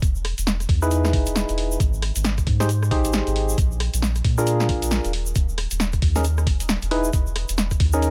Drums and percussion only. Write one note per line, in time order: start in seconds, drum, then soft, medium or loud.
0.02 kick loud
0.02 closed hi-hat medium
0.02 shaker medium
0.15 shaker soft
0.25 cross-stick medium
0.25 open hi-hat loud
0.38 closed hi-hat medium
0.38 shaker medium
0.47 snare loud
0.47 shaker medium
0.60 cross-stick soft
0.60 closed hi-hat soft
0.60 shaker soft
0.69 kick loud
0.69 open hi-hat medium
0.82 shaker medium
0.91 closed hi-hat medium
0.91 shaker medium
1.05 cross-stick medium
1.05 snare medium
1.05 shaker soft
1.13 kick loud
1.13 open hi-hat loud
1.26 closed hi-hat medium
1.26 shaker medium
1.36 snare loud
1.36 shaker medium
1.49 closed hi-hat soft
1.49 shaker soft
1.58 open hi-hat medium
1.71 shaker medium
1.80 kick loud
1.80 closed hi-hat medium
1.80 shaker medium
1.93 shaker soft
2.02 cross-stick medium
2.02 open hi-hat loud
2.16 closed hi-hat medium
2.16 shaker medium
2.24 snare loud
2.24 shaker medium
2.38 kick medium
2.38 cross-stick soft
2.38 closed hi-hat soft
2.38 shaker soft
2.47 kick loud
2.47 open hi-hat medium
2.60 snare medium
2.60 shaker medium
2.69 closed hi-hat medium
2.69 shaker medium
2.82 cross-stick medium
2.82 shaker soft
2.91 kick loud
2.91 open hi-hat loud
3.04 closed hi-hat medium
3.04 shaker medium
3.13 snare loud
3.13 shaker medium
3.27 closed hi-hat medium
3.27 shaker soft
3.36 open hi-hat medium
3.49 shaker medium
3.58 kick loud
3.58 closed hi-hat medium
3.58 shaker medium
3.72 shaker soft
3.80 cross-stick medium
3.80 open hi-hat loud
3.94 closed hi-hat medium
3.94 shaker medium
4.02 snare loud
4.02 shaker medium
4.15 cross-stick soft
4.15 closed hi-hat soft
4.15 shaker soft
4.25 kick loud
4.25 open hi-hat medium
4.38 shaker medium
4.47 closed hi-hat medium
4.47 shaker medium
4.60 cross-stick medium
4.60 snare medium
4.60 shaker soft
4.69 kick loud
4.69 open hi-hat loud
4.82 closed hi-hat medium
4.82 shaker medium
4.91 snare loud
4.91 shaker medium
5.04 closed hi-hat medium
5.04 shaker soft
5.13 open hi-hat medium
5.26 shaker medium
5.35 kick loud
5.35 closed hi-hat medium
5.35 shaker medium
5.49 shaker soft
5.58 cross-stick medium
5.58 open hi-hat loud
5.71 closed hi-hat medium
5.71 shaker medium
5.80 snare loud
5.80 shaker medium
5.93 kick medium
5.93 cross-stick soft
5.93 closed hi-hat soft
5.93 shaker soft
6.02 kick medium
6.02 open hi-hat medium
6.16 snare medium
6.16 shaker medium
6.24 closed hi-hat medium
6.24 shaker medium
6.38 cross-stick medium
6.38 shaker soft
6.47 kick loud
6.47 open hi-hat loud
6.60 closed hi-hat medium
6.60 shaker medium
6.69 snare loud
6.69 shaker medium
6.82 closed hi-hat medium
6.82 shaker soft
6.91 open hi-hat loud
7.04 shaker medium
7.13 kick loud
7.13 closed hi-hat medium
7.13 shaker medium
7.26 shaker soft
7.36 cross-stick medium
7.36 open hi-hat loud
7.49 closed hi-hat medium
7.49 shaker medium
7.58 snare loud
7.58 shaker medium
7.71 kick medium
7.71 cross-stick soft
7.71 closed hi-hat soft
7.71 shaker soft
7.80 kick loud
7.80 open hi-hat medium
7.93 shaker medium
8.02 closed hi-hat medium
8.02 shaker medium